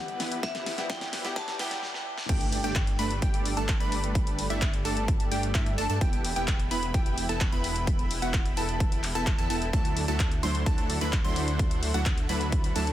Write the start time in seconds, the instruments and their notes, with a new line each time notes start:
Already playing: grand piano E3 G3 B3 G4, analog synth pad E3 E4 G4 B4, vibraphone F#5, riser
0.08 closed hi-hat
0.20 supersaw synth B3 E4 B4, snare, open hi-hat
0.32 closed hi-hat
0.43 supersaw synth B3 E4 G4, vibraphone E5, kick, snare, closed hi-hat
0.55 snare, closed hi-hat
0.66 snare, open hi-hat
0.77 grand piano E3 G3 B3 G4, supersaw synth B3 E4 G4, snare, closed hi-hat
0.90 supersaw synth E4 G4, vibraphone G5, kick, snare, closed hi-hat
1.01 snare, closed hi-hat
1.13 snare, open hi-hat
1.23 grand piano E3 G3 B3 G4, supersaw synth B3 E4 G4, snare, closed hi-hat
1.35 grand piano E3 G3 B3 G4, supersaw synth B3 E4 G4, vibraphone A5, kick, snare, closed hi-hat
1.48 snare, closed hi-hat
1.58 grand piano E3 G3 B3 G4, supersaw synth B3 E4 G4, vibraphone G5, snare, open hi-hat
1.71 snare, closed hi-hat
1.83 snare
1.94 snare
2.18 snare
2.29 detuned saw bass G1, analog synth pad G3 G4 A4 D5, supersaw synth A3 D4 G4, digital synth lead G5, kick, closed hi-hat, crash, impact
2.41 closed hi-hat
2.52 open hi-hat
2.64 detuned saw bass G1, supersaw synth A3 D4 G4, digital synth lead G5, closed hi-hat
2.75 kick, clap, closed hi-hat
2.87 closed hi-hat
2.99 detuned saw bass G1, supersaw synth A3 D4 B4, digital synth lead B5, open hi-hat
3.11 closed hi-hat
3.22 detuned saw bass G1, supersaw synth A3 D4 G4, digital synth lead G5, kick, closed hi-hat
3.34 closed hi-hat
3.45 open hi-hat
3.57 detuned saw bass G1, supersaw synth A3 D4 A4, digital synth lead A5, closed hi-hat
3.69 kick, clap, closed hi-hat
3.80 detuned saw bass G1, supersaw synth A3 D4 B4, digital synth lead B5, closed hi-hat
3.92 open hi-hat
4.04 closed hi-hat
4.15 kick, closed hi-hat
4.27 closed hi-hat
4.39 open hi-hat
4.50 detuned saw bass G1, supersaw synth A3 D4 E4, digital synth lead E5, closed hi-hat
4.62 kick, clap, closed hi-hat
4.74 closed hi-hat
4.85 detuned saw bass G1, supersaw synth A3 D4 A4, digital synth lead A5, open hi-hat
4.97 closed hi-hat
5.08 kick, closed hi-hat
5.20 closed hi-hat
5.31 detuned saw bass G1, supersaw synth A3 D4 G4, digital synth lead G5, open hi-hat
5.43 closed hi-hat
5.55 detuned saw bass G2, supersaw synth A3 D4 E4, digital synth lead E5, kick, clap, closed hi-hat
5.66 closed hi-hat
5.78 detuned saw bass G1, supersaw synth A3 D4 A4, digital synth lead A5, open hi-hat
5.90 detuned saw bass G2, supersaw synth A3 D4 A4, digital synth lead A5, closed hi-hat
6.01 detuned saw bass E1, supersaw synth B3 E4 G4, analog synth pad E4 E5 G5 B5, digital synth lead G5, kick, closed hi-hat
6.13 closed hi-hat
6.25 open hi-hat
6.36 detuned saw bass E1, supersaw synth B3 E4 G4, digital synth lead G5, closed hi-hat
6.48 kick, clap, closed hi-hat
6.60 closed hi-hat
6.71 detuned saw bass E1, supersaw synth B3 E4 B4, digital synth lead B5, open hi-hat
6.83 closed hi-hat
6.94 detuned saw bass E1, supersaw synth B3 E4 G4, digital synth lead G5, kick, closed hi-hat
7.06 closed hi-hat
7.18 open hi-hat
7.29 detuned saw bass E1, supersaw synth B3 E4 A4, digital synth lead A5, closed hi-hat
7.41 kick, clap, closed hi-hat
7.52 detuned saw bass E1, supersaw synth B3 E4 B4, digital synth lead B5, closed hi-hat
7.64 open hi-hat
7.76 closed hi-hat
7.87 kick, closed hi-hat
7.99 closed hi-hat
8.11 open hi-hat
8.22 detuned saw bass E1, supersaw synth B3 E4 F#4, digital synth lead F#5, closed hi-hat
8.34 kick, clap, closed hi-hat
8.46 closed hi-hat
8.57 detuned saw bass E1, supersaw synth B3 E4 A4, digital synth lead A5, open hi-hat
8.69 closed hi-hat
8.80 kick, closed hi-hat
8.92 closed hi-hat
9.03 clap, open hi-hat
9.15 detuned saw bass E1, supersaw synth B3 E4 A4, digital synth lead A5, closed hi-hat
9.27 kick, clap, closed hi-hat
9.38 detuned saw bass E2, supersaw synth B3 E4 A4, digital synth lead A5, closed hi-hat
9.50 detuned saw bass E1, supersaw synth B3 E4 A4, digital synth lead A5, open hi-hat
9.62 closed hi-hat
9.73 detuned saw bass D2, supersaw synth F#3 A3 D4 E4 A4, analog synth pad D4 A4 E5 F#5, digital synth lead A5, kick, closed hi-hat
9.85 closed hi-hat
9.97 open hi-hat
10.08 detuned saw bass D2, supersaw synth F#3 A3 D4 E4 A4, digital synth lead A5, closed hi-hat
10.20 kick, clap, closed hi-hat
10.31 closed hi-hat
10.43 detuned saw bass D2, supersaw synth F#3 A3 D4 E4 C5, digital synth lead C6, open hi-hat
10.55 closed hi-hat
10.66 detuned saw bass D2, supersaw synth F#3 A3 D4 E4 A4, digital synth lead A5, kick, closed hi-hat
10.78 closed hi-hat
10.90 open hi-hat
11.01 detuned saw bass D2, supersaw synth F#3 A3 D4 E4 B4, digital synth lead B5, closed hi-hat
11.13 kick, clap, closed hi-hat
11.24 detuned saw bass D2, supersaw synth F#3 A3 D4 E4 C5, digital synth lead C6, closed hi-hat
11.36 open hi-hat
11.48 closed hi-hat
11.59 kick, closed hi-hat
11.71 closed hi-hat
11.83 open hi-hat
11.94 detuned saw bass D2, supersaw synth F#3 A3 D4 E4 F#4, digital synth lead F#5, closed hi-hat
12.06 kick, clap, closed hi-hat
12.18 closed hi-hat
12.29 detuned saw bass D2, supersaw synth F#3 A3 D4 E4 B4, digital synth lead B5, open hi-hat
12.41 closed hi-hat
12.52 kick, closed hi-hat
12.64 closed hi-hat
12.76 detuned saw bass D2, supersaw synth F#3 A3 D4 E4 A4, digital synth lead A5, open hi-hat
12.87 closed hi-hat